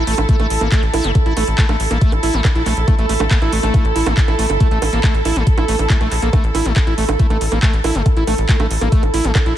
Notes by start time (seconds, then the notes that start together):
Already playing: E4 A4 A5
0.07 A1 A3, open hi-hat
0.18 A1, closed hi-hat, high bongo
0.29 A3, kick, closed hi-hat
0.40 A1 A3, closed hi-hat, high bongo
0.50 A1, open hi-hat
0.61 A1 A#3, closed hi-hat, high bongo
0.72 A3, kick, clap, closed hi-hat
0.83 A1, closed hi-hat
0.94 A1 E4, open hi-hat, high bongo
1.04 G1 A3, closed hi-hat
1.15 kick, closed hi-hat, high bongo
1.26 A1 E4, closed hi-hat
1.37 A1 A3, open hi-hat, high bongo
1.47 A1, closed hi-hat
1.58 A3, kick, clap, closed hi-hat
1.69 A1 A3, closed hi-hat, high bongo
1.80 A1, open hi-hat
1.91 A1 A#3, closed hi-hat, high bongo
2.01 A3, kick, closed hi-hat
2.12 A1, closed hi-hat, high bongo
2.23 A1 E4, open hi-hat
2.34 A1 A3, closed hi-hat
2.45 kick, clap, closed hi-hat, high bongo
2.55 A#1 E4, closed hi-hat
2.66 A#1 A3, clap, open hi-hat, high bongo
2.77 A#1, closed hi-hat
2.88 A3, kick, closed hi-hat, high bongo
2.99 A1 A3, closed hi-hat
3.09 A1 A3, open hi-hat
3.20 A1 A3, closed hi-hat, high bongo
3.31 A#3, kick, clap, closed hi-hat
3.42 A1 E4, closed hi-hat, high bongo
3.53 A1 A3, open hi-hat
3.63 A1 A3, closed hi-hat, high bongo
3.74 A3, kick, closed hi-hat, high bongo
3.85 A1, closed hi-hat
3.96 A1 E4, open hi-hat
4.06 A1 A3, closed hi-hat, high bongo
4.17 kick, clap, closed hi-hat
4.28 A1 E4, closed hi-hat, high bongo
4.39 A1 A3, open hi-hat
4.50 G1, closed hi-hat, high bongo
4.60 A3, kick, closed hi-hat
4.71 A1 A3, closed hi-hat
4.82 A1, open hi-hat, high bongo
4.93 A1 A#3, closed hi-hat
5.04 A3, kick, clap, closed hi-hat, high bongo
5.14 A1, closed hi-hat
5.25 A1 E4, open hi-hat, high bongo
5.36 A1 A3, closed hi-hat
5.47 kick, closed hi-hat
5.58 A1 E4, closed hi-hat, high bongo
5.68 A1 A3, open hi-hat
5.79 A1, closed hi-hat, high bongo
5.90 A3, kick, clap, closed hi-hat
6.01 A#1 A3, closed hi-hat, high bongo
6.12 A#1, clap, open hi-hat
6.22 A#1 A#3, closed hi-hat
6.33 A3, kick, closed hi-hat, high bongo
6.44 A1, closed hi-hat
6.55 A1 E4, open hi-hat, high bongo
6.65 A1 A3, closed hi-hat
6.76 kick, clap, closed hi-hat, high bongo
6.87 A1 E4, closed hi-hat
6.98 A1 A3, open hi-hat
7.09 A1, closed hi-hat, high bongo
7.19 A3, kick, closed hi-hat
7.30 A1 A3, closed hi-hat, high bongo
7.41 A1, open hi-hat
7.52 A1 A#3, closed hi-hat, high bongo
7.63 A3, kick, clap, closed hi-hat
7.73 A1, closed hi-hat
7.84 A1 E4, open hi-hat, high bongo
7.95 G1 A3, closed hi-hat
8.06 kick, closed hi-hat, high bongo
8.17 A1 E4, closed hi-hat
8.27 A1 A3, open hi-hat, high bongo
8.38 A1, closed hi-hat
8.49 A3, kick, clap, closed hi-hat
8.60 A1 A3, closed hi-hat, high bongo
8.71 A1, open hi-hat
8.81 A1 A#3, closed hi-hat, high bongo
8.92 A3, kick, closed hi-hat
9.03 A1, closed hi-hat, high bongo
9.14 A1 E4, open hi-hat
9.24 A1 A3, closed hi-hat
9.35 kick, clap, closed hi-hat, high bongo
9.46 A#1 E4, closed hi-hat